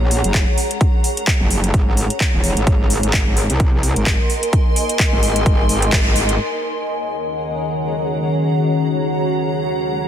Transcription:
Already playing: A#1 G#4 C#5 F#5 A#5
0.11 open hi-hat
0.24 F#1, closed hi-hat
0.34 kick, clap, closed hi-hat
0.58 open hi-hat
0.71 closed hi-hat
0.81 kick, closed hi-hat
1.04 open hi-hat
1.17 closed hi-hat
1.27 kick, clap, closed hi-hat
1.41 F#1
1.51 open hi-hat
1.64 closed hi-hat
1.74 G#1, kick, closed hi-hat
1.97 open hi-hat
2.10 closed hi-hat
2.20 kick, clap, closed hi-hat
2.34 E1
2.44 open hi-hat
2.57 G#1, closed hi-hat
2.67 G#1 A#4, kick, closed hi-hat
2.90 open hi-hat
3.03 G#1 D#5, closed hi-hat
3.13 C6, kick, clap, closed hi-hat
3.27 G#1
3.37 G#5, open hi-hat
3.50 C2, closed hi-hat
3.60 kick, closed hi-hat
3.83 open hi-hat
3.96 G#1, closed hi-hat
4.06 kick, clap, closed hi-hat
4.30 open hi-hat
4.43 closed hi-hat
4.53 kick, closed hi-hat
4.76 open hi-hat
4.89 closed hi-hat
4.99 kick, clap, closed hi-hat
5.13 G#1
5.23 open hi-hat
5.36 closed hi-hat
5.46 G#1, kick, closed hi-hat
5.69 G#1, open hi-hat
5.82 closed hi-hat
5.92 G#1, kick, clap, closed hi-hat
6.16 G#1, open hi-hat
6.29 closed hi-hat
6.39 D#3 C#4 F#4
6.52 C#5
6.57 F#5
6.65 G#4
6.88 A#5

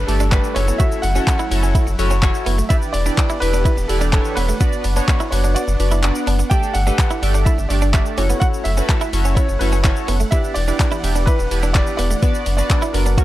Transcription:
Already playing: G3 A3 D4, downlifter
0.07 G1 A3 D4 G4 A4 D5, open hi-hat, shaker
0.20 D4, shaker
0.31 A3 D4 G4 A4 B4 D5, muted clean electric guitar stroke, kick, clap, closed hi-hat, shaker
0.44 shaker
0.54 F#1 F#3 C#4 E4 F#4 A4 C#5, open hi-hat, shaker
0.68 B3, shaker
0.78 F#4 E5, kick, closed hi-hat, shaker
0.92 shaker
1.02 F#1 F#5, muted clean electric guitar stroke, open hi-hat, shaker
1.15 C#4 E4 F#4 A4 C#5, shaker
1.27 kick, clap, closed hi-hat, shaker
1.39 E4, shaker
1.51 F#1 C#4 E4 F#4 A4 C#5, muted clean electric guitar stroke, open hi-hat, shaker
1.63 C#4, shaker
1.75 E4, kick, closed hi-hat, shaker
1.87 F#1, muted clean electric guitar stroke, shaker
1.99 F#1 C#4 E4 F#4 A4 C#5, open hi-hat, shaker
2.11 C#4, shaker
2.22 C#4 E4 F#4 A4 C#5, muted clean electric guitar stroke, kick, clap, closed hi-hat, shaker
2.34 shaker
2.46 F#1 B3, open hi-hat, shaker
2.58 A3, shaker
2.69 E3 B3 D4 E4 G4 B4 D5 E5 F#5, kick, closed hi-hat, shaker
2.82 shaker
2.93 E1 D5, muted clean electric guitar stroke, open hi-hat, shaker
3.06 D4 E4 G4 B4 D5, shaker
3.18 kick, clap, closed hi-hat, shaker
3.30 E4, shaker
3.40 E1 D4 E4 G4 B4 D5, muted clean electric guitar stroke, open hi-hat, shaker
3.54 D4, shaker
3.65 E4, kick, closed hi-hat, shaker
3.77 E1, muted clean electric guitar stroke, shaker
3.88 E1 D4 E4 G4 A4 B4 D5, open hi-hat, shaker
4.01 D4, shaker
4.12 D4 E4 G4 A4 B4 C#5, kick, clap, closed hi-hat, shaker
4.25 shaker
4.35 E1 B3 B4, open hi-hat, shaker
4.49 A3, shaker
4.60 B3 D4 F#4 B4 D5, kick, closed hi-hat, shaker
4.73 shaker
4.84 F#1, muted clean electric guitar stroke, open hi-hat, shaker
4.96 B3 D4 F#4 B4 C#5, shaker
5.08 kick, clap, closed hi-hat, shaker
5.20 E4, shaker
5.31 F#1 B3 D4 F#4 B4 C#5 D5, muted clean electric guitar stroke, open hi-hat, shaker
5.44 D4, shaker
5.55 F#4 D5, closed hi-hat, shaker
5.68 F#1, muted clean electric guitar stroke, shaker
5.79 F#1 B3 D4 F#4 B4 D5, open hi-hat, shaker
5.91 E4, shaker
6.03 B3 D4 F#4 B4 D5, muted clean electric guitar stroke, clap, closed hi-hat, shaker
6.15 shaker
6.27 F#1 D4, open hi-hat, shaker
6.39 B3, shaker
6.50 A3 D4 G4 A4 D5 G5, kick, closed hi-hat, shaker
6.63 shaker
6.73 G1 F#5, muted clean electric guitar stroke, open hi-hat, shaker
6.87 A3 D4 G4 A4 B4, shaker
6.99 kick, clap, closed hi-hat, shaker
7.11 E4, shaker
7.22 G1 A3 D4 G4 A4 D5, muted clean electric guitar stroke, open hi-hat, shaker
7.34 D4, shaker
7.45 E4 E5, kick, closed hi-hat, shaker
7.58 G1, muted clean electric guitar stroke, shaker
7.69 G1 A3 D4 G4 A4 D5, open hi-hat, shaker
7.82 D4, shaker
7.92 A3 D4 G4 A4 D5 E5, muted clean electric guitar stroke, kick, clap, closed hi-hat, shaker
8.06 shaker
8.18 F#1 A3 C#4 E4 F#4 A4 C#5 F#5, open hi-hat, shaker
8.30 B3, shaker
8.40 F#4 F#5, kick, closed hi-hat, shaker
8.54 shaker
8.64 F#1 E5, muted clean electric guitar stroke, open hi-hat, shaker
8.77 C#4 E4 F#4 A4 B4, shaker
8.89 kick, clap, closed hi-hat, shaker
9.01 E4, shaker
9.13 F#1 C#4 E4 F#4 A4 C#5, muted clean electric guitar stroke, open hi-hat, shaker
9.25 C#4, shaker
9.35 E4 C#5, kick, closed hi-hat, shaker
9.49 F#1, muted clean electric guitar stroke, shaker
9.59 F#1 C#4 E4 F#4 A4 B4 C#5, open hi-hat, shaker
9.72 C#4, shaker
9.83 C#4 E4 F#4 A4 C#5, muted clean electric guitar stroke, kick, clap, closed hi-hat, shaker
9.96 shaker
10.08 F#1 B3, open hi-hat, shaker
10.20 A3, shaker
10.31 E3 B3 D4 E4 G4 B4 D5 E5, kick, closed hi-hat, shaker
10.44 shaker
10.54 E1 D5, muted clean electric guitar stroke, open hi-hat, shaker
10.68 D4 E4 G4 B4 D5, shaker
10.80 kick, clap, closed hi-hat, shaker
10.92 E4, shaker
11.03 E1 D4 E4 G4 B4 D5, muted clean electric guitar stroke, open hi-hat, shaker
11.15 D4, shaker
11.26 E4 B4, kick, closed hi-hat, shaker
11.39 E1, muted clean electric guitar stroke, shaker
11.51 E1 D4 E4 G4 B4 D5, open hi-hat, shaker
11.63 D4, shaker
11.73 D4 E4 G4 B4 D5, muted clean electric guitar stroke, kick, clap, closed hi-hat, shaker
11.87 shaker
11.97 E1 B3 D5, open hi-hat, shaker
12.11 A3, shaker
12.22 B3 D4 F#4 B4 D5, kick, closed hi-hat, shaker
12.35 shaker
12.46 F#1, muted clean electric guitar stroke, open hi-hat, shaker
12.57 B3 D4 F#4 B4 D5, shaker
12.70 kick, clap, closed hi-hat, shaker
12.82 E4, shaker
12.93 F#1 B3 D4 F#4 A#4 B4 D5, muted clean electric guitar stroke, open hi-hat, shaker
13.06 D4, shaker
13.18 A#3 C#4 F#4 A#4 C#5, kick, closed hi-hat, shaker

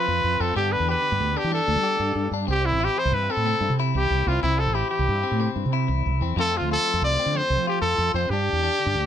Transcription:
Already playing: C4 F4 B4
0.06 F2 F3
0.24 F2
0.40 F2 C4 A4
0.55 G2 D3 B3 D4 G4
0.72 B4
0.80 E2
0.89 G4 B4
1.02 D3
1.12 G2
1.19 D2
1.36 D4 G4
1.44 E3
1.51 G2 D4 A4
1.67 D2
1.76 G3
1.83 G4
1.99 G2
2.15 G2
2.31 G2 D4
2.47 C2 C3 C4
2.51 G4
2.66 E4
2.71 A1
2.80 E4 G4
2.96 E3 C5
3.05 C2
3.12 G2 B4
3.30 C4 A4
3.36 A2
3.46 C3 C4
3.60 G2
3.69 C3
3.80 E4
3.94 C2 E3 G4
4.10 C2
4.26 C2 C4 F4
4.43 C2 C3 C4 E4
4.59 A4
4.66 A1
4.74 E4 G4
4.90 E3 G4
4.99 C2
5.08 G2
5.23 C4
5.31 A2
5.40 C3 C4
5.56 G2
5.65 C3
5.73 E4
5.88 C2 E3
6.05 C2
6.21 E2 C4
6.36 F2 F3 A3 C4 F4 A4
6.57 D2 F4
6.71 F4 A4
6.87 F3
6.93 F2
7.01 C2 D5
7.20 C4
7.26 D3
7.34 F2 C4 C5
7.50 C2
7.57 F3
7.67 F4 G4
7.81 F2 F3 A4
7.98 F2
8.14 F2 C4 C5
8.29 G2 D4 G4
8.52 E2
8.63 D4
8.79 D3
8.86 G2
8.94 D2

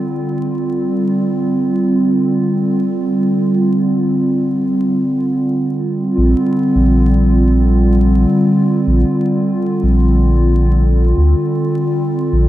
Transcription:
Already playing: D3 G3 C4 F4
6.18 A#1
6.75 A#1
8.87 A#1
9.83 A#1
11.17 D2
12.33 A#1

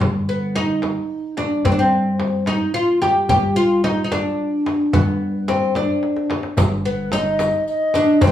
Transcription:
0.01 G1, tombak dum, frame drum
0.29 B3
0.56 D#4, tombak tek, frame drum
0.82 tombak tek, frame drum
1.37 D4, tombak tek, frame drum
1.65 G2 C4, tombak dum, frame drum
1.72 D4
1.79 C4
1.92 tombak ka
2.20 tombak tek, frame drum
2.46 D#4, tombak tek, frame drum
2.74 F4
3.02 G4, tombak tek, frame drum
3.29 G1 G4, tombak dum, frame drum
3.56 F4, tombak ka
3.84 D#4, tombak tek, frame drum
4.04 D#4
4.12 D4, tombak tek, frame drum
4.66 tombak tek, frame drum
4.93 G2 B3, frame drum, tombak dum
5.22 tombak ka
5.48 C4, tombak tek, frame drum
5.75 D4, tombak tek, frame drum
6.03 tombak tek
6.16 tombak ka
6.30 tombak tek, frame drum
6.43 tombak ka
6.57 G1, riq, tombak dum, frame drum
6.84 B3 B4, tombak ka
7.12 D#4 D#5, riq, tombak tek, frame drum
7.39 riq, tombak tek, frame drum
7.68 D#5, riq
7.94 D4, riq, frame drum
8.21 G2 C4 C5, riq, frame drum, tombak dum
8.27 B3

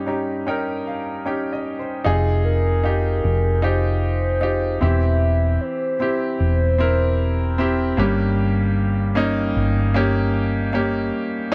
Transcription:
Already playing: G2 G3 C#4 D#4 G4
0.07 C#4 D#4 G4 A#5
0.47 C#4 D#4 A#4 G5
0.87 F5
1.26 C#4 D#4 G4 G5
1.53 D#5
1.79 C5
2.04 F1 C3 D#4 F4 G#4
2.45 A#4
2.84 D#4 F4 G4
3.25 F1
3.62 D#4 F4 G4 C5
4.01 C5
4.41 D#4 F4 G4
4.80 E1 E3 C4 E4 G4 E5
5.61 C5
6.00 C4 E4 G4
6.39 E1 C5
6.78 C4 E4 A#4
7.58 C4 E4 G4
7.97 G1 G2 G3 A#3 C#4 G4
9.15 A#3 C#4 D#4
9.57 G1
9.94 A#3 C#4 G4
10.73 A#3 C#4 G4

